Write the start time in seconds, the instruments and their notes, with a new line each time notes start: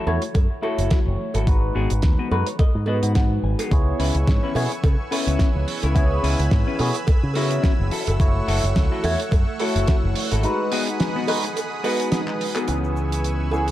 Already playing: clean electric guitar E4 F#4 A4
0.07 picked electric bass E2, tine electric piano A3 E4 F#4 C#5, cowbell
0.22 closed hi-hat
0.34 picked electric bass F#2, muted clean electric guitar stroke, kick, closed hi-hat, cowbell
0.62 tine electric piano A3 E4 F#4 C#5, clean electric guitar E4 F#4 A4, cowbell
0.79 picked electric bass F#1, closed hi-hat
0.91 kick, snare, closed hi-hat
1.07 picked electric bass F#1
1.34 picked electric bass G#1, clean electric guitar E4 F#4 A4, closed hi-hat, cowbell
1.47 tine electric piano G#3 D#4 F#4 B4, kick, closed hi-hat
1.75 picked electric bass G#1, clean electric guitar B3 F#4 G#4
1.90 picked electric bass G#1, closed hi-hat
2.02 picked electric bass D#2, kick, snare, closed hi-hat
2.18 clean electric guitar B3 F#4 B4
2.31 picked electric bass F#2, tine electric piano G#3 D#4 F#4 B4, clean electric guitar B4, cowbell
2.47 clean electric guitar C#5, closed hi-hat
2.59 clean electric guitar D#5, muted clean electric guitar stroke, kick, closed hi-hat, cowbell
2.75 picked electric bass G#2
2.86 tine electric piano G#3 D#4 F#4 B4, clean electric guitar B3 F#4 B4 D#5, cowbell
3.03 picked electric bass G#2, clean electric guitar F#5, closed hi-hat
3.15 clean electric guitar F#5, kick, snare, closed hi-hat
3.43 picked electric bass G#1, clean electric guitar G#5
3.59 clean electric guitar B3 F#4 G#4, closed hi-hat, cowbell
3.71 picked electric bass C#2, tine electric piano B3 E4 G#4 C#5, analog synth pad B4 G#5 C#6 E6, kick, closed hi-hat
3.99 picked electric bass C#2, clean electric guitar C#4 E4 B4, open hi-hat
4.15 picked electric bass C#2, closed hi-hat
4.28 picked electric bass G#2, muted clean electric guitar stroke, kick, snare, closed hi-hat
4.43 clean electric guitar C#4 E4 B4
4.55 picked electric bass B2, tine electric piano B3 E4 G#4 C#5, open hi-hat, cowbell
4.72 closed hi-hat
4.84 picked electric bass C#3, muted clean electric guitar stroke, kick, closed hi-hat, cowbell
5.11 tine electric piano B3 E4 G#4 C#5, clean electric guitar C#4 E4 B4, open hi-hat, cowbell
5.27 picked electric bass C#2, closed hi-hat
5.39 kick, snare, closed hi-hat
5.55 picked electric bass C#2
5.68 open hi-hat
5.83 picked electric bass C#2, clean electric guitar C#4 E4 C#5, closed hi-hat, cowbell
5.95 tine electric piano B3 E4 G#4 C#5, analog synth pad B5, kick, closed hi-hat
6.23 picked electric bass C#2, clean electric guitar C#4 E4 B4, open hi-hat
6.39 picked electric bass C#2, closed hi-hat
6.51 picked electric bass G#2, muted clean electric guitar stroke, kick, snare, closed hi-hat
6.67 clean electric guitar C#4 E4 B4
6.79 picked electric bass B2, tine electric piano B3 E4 G#4 C#5, open hi-hat, cowbell
6.94 closed hi-hat
7.07 muted clean electric guitar stroke, kick, closed hi-hat, cowbell
7.23 picked electric bass C#3
7.34 tine electric piano B3 E4 G#4 C#5, clean electric guitar C#4 E4 F#4, open hi-hat, cowbell
7.51 closed hi-hat
7.64 kick, snare, closed hi-hat
7.80 picked electric bass F#1
7.91 analog synth pad A3 F#5 C#6, clean electric guitar E4 F#4 A4, muted picked electric bass stroke, open hi-hat
8.07 picked electric bass F#1, closed hi-hat, cowbell
8.20 picked electric bass F#1, tine electric piano A3 E4 F#4 C#5, kick, closed hi-hat
8.48 picked electric bass F#1, clean electric guitar E4 F#4 A4, open hi-hat
8.64 picked electric bass F#1, closed hi-hat
8.76 picked electric bass C#2, muted clean electric guitar stroke, kick, snare, closed hi-hat
8.92 clean electric guitar E4 F#4 A4
9.04 picked electric bass E2, tine electric piano A3 E4 F#4 C#5, open hi-hat, cowbell
9.20 closed hi-hat
9.31 picked electric bass F#2, muted clean electric guitar stroke, kick, closed hi-hat, cowbell
9.59 tine electric piano A3 E4 F#4 C#5, clean electric guitar E4 F#4 A4, open hi-hat, cowbell
9.76 picked electric bass F#1, closed hi-hat
9.87 kick, snare, closed hi-hat
10.04 picked electric bass F#1
10.15 open hi-hat
10.31 picked electric bass G#1, clean electric guitar E4 F#4 A4, closed hi-hat, cowbell
10.43 tine electric piano G#3 D#4 F#4 B4, analog synth pad G#4 B5 D#6, closed hi-hat
10.72 clean electric guitar B3 F#4 G#4, open hi-hat
10.87 closed hi-hat
11.00 muted clean electric guitar stroke, snare, closed hi-hat
11.16 clean electric guitar B3 F#4 B4
11.28 tine electric piano G#3 D#4 F#4 B4, open hi-hat, cowbell
11.44 closed hi-hat
11.56 muted clean electric guitar stroke, closed hi-hat, cowbell
11.83 tine electric piano G#3 D#4 F#4 B4, clean electric guitar B3 F#4 B4, open hi-hat, cowbell
12.00 closed hi-hat
12.12 snare, closed hi-hat
12.28 clap
12.41 open hi-hat
12.55 clean electric guitar B3 F#4 G#4, clap, closed hi-hat, cowbell
12.68 picked electric bass C#2, tine electric piano E3 B3 C#4 G#4, analog synth pad B4 G#5 C#6 E6, muted clean electric guitar stroke, closed hi-hat, shaker
12.84 muted clean electric guitar stroke, shaker
12.97 shaker
13.12 closed hi-hat, shaker
13.24 muted clean electric guitar stroke, closed hi-hat, shaker
13.40 muted clean electric guitar stroke
13.51 tine electric piano E3 B3 C#4 G#4, muted clean electric guitar stroke, cowbell, shaker
13.68 muted clean electric guitar stroke, closed hi-hat